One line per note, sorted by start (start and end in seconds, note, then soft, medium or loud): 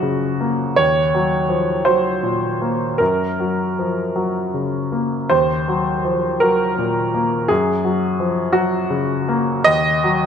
0.00 0.74 F#2 soft
0.00 0.63 C#3 soft
0.00 0.81 F3 soft
0.00 0.81 F#3 soft
0.00 0.77 F#4 medium
0.00 0.81 G#4 medium
0.41 0.78 A#3 soft
0.76 2.95 D#2 soft
0.76 1.86 C#5 medium
1.15 1.72 F#3 soft
1.49 1.86 F3 soft
1.85 2.46 F#3 soft
1.85 2.99 C5 medium
2.23 2.84 A#2 soft
2.62 3.00 A#3 soft
2.98 5.28 F#2 soft
2.98 4.92 A#4 medium
3.40 4.01 F#3 soft
3.79 4.16 F3 soft
4.16 4.78 F#3 soft
4.54 5.16 C#3 soft
4.92 5.31 A#3 soft
5.30 7.46 D#2 soft
5.30 6.41 C5 medium
5.68 6.27 F#3 soft
6.05 6.42 F3 soft
6.40 7.01 F#3 soft
6.40 7.49 A#4 medium
6.78 7.36 A#2 soft
7.14 7.50 A#3 soft
7.48 9.63 F#2 soft
7.48 8.54 G#4 medium
7.85 8.41 F#3 soft
8.20 8.55 F3 soft
8.53 9.13 F#3 soft
8.53 9.66 F#4 medium
8.90 9.51 C#3 soft
9.28 9.67 A#3 soft
9.64 10.26 D#2 soft
9.64 10.26 D#5 loud
10.04 10.26 F#3 soft